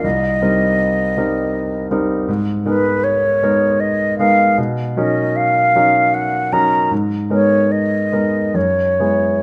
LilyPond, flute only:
\new Staff \with { instrumentName = "Flute" } { \time 3/4 \key c \phrygian \tempo 4 = 78 ees''2~ ees''8 r8 | \key gis \dorian r8 b'8 cis''4 dis''8 eis''8 | r8 dis''8 eis''4 fis''8 ais''8 | r8 cis''8 dis''4 cis''4 | }